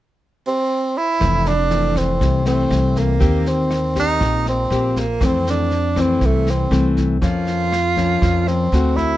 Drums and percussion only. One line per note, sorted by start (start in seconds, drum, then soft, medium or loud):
1.21 kick medium
1.21 cross-stick medium
1.21 snare soft
1.45 snare soft
1.70 snare soft
1.96 kick soft
1.96 cross-stick medium
1.96 snare soft
2.21 kick medium
2.21 snare soft
2.46 snare soft
2.71 cross-stick medium
2.71 snare soft
2.96 kick soft
2.96 snare soft
3.21 kick medium
3.21 snare soft
3.46 snare soft
3.71 cross-stick medium
3.71 snare soft
3.96 kick soft
3.96 snare soft
4.21 kick medium
4.21 cross-stick medium
4.21 snare soft
4.46 snare soft
4.71 snare soft
4.96 kick soft
4.96 snare soft
5.21 kick medium
5.21 cross-stick medium
5.21 snare soft
5.47 snare soft
5.71 snare soft
5.96 kick soft
5.96 cross-stick medium
5.96 snare soft
6.21 kick medium
6.21 snare soft
6.47 snare soft
6.72 cross-stick medium
6.72 snare soft
6.97 kick soft
6.97 snare soft
7.22 kick medium
7.22 snare soft
7.47 snare soft
7.72 cross-stick medium
7.72 snare soft
7.97 kick soft
7.97 snare soft
8.22 kick medium
8.22 cross-stick medium
8.22 snare soft
8.47 snare soft
8.73 snare soft
8.97 kick soft
8.97 snare soft